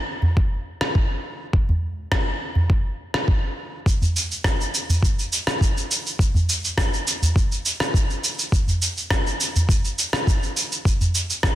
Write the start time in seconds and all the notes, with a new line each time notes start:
0.22 udu
0.37 kick
0.81 cross-stick
0.95 kick
1.53 kick
1.69 udu
2.12 kick, cross-stick
2.55 udu
2.70 kick
3.14 cross-stick
3.28 kick
3.86 kick, shaker
4.02 udu, shaker
4.16 shaker
4.31 shaker
4.44 kick, cross-stick, shaker
4.61 shaker
4.74 shaker
4.89 udu, shaker
5.03 kick, shaker
5.19 shaker
5.33 shaker
5.47 cross-stick, shaker
5.61 kick, shaker
5.77 shaker
5.91 shaker
6.06 shaker
6.19 kick, shaker
6.34 udu, shaker
6.49 shaker
6.65 shaker
6.77 kick, cross-stick, shaker
6.94 shaker
7.07 shaker
7.22 udu, shaker
7.36 kick, shaker
7.52 shaker
7.66 shaker
7.80 cross-stick, shaker
7.94 kick, shaker
8.10 shaker
8.24 shaker
8.39 shaker
8.52 kick, shaker
8.67 udu, shaker
8.82 shaker
8.97 shaker
9.10 kick, cross-stick, shaker
9.27 shaker
9.40 shaker
9.56 udu, shaker
9.69 kick, shaker
9.85 shaker
9.99 shaker
10.13 cross-stick, shaker
10.27 kick, shaker
10.43 shaker
10.57 shaker
10.72 shaker
10.85 kick, shaker
11.01 udu, shaker
11.15 shaker
11.30 shaker
11.43 kick, cross-stick, shaker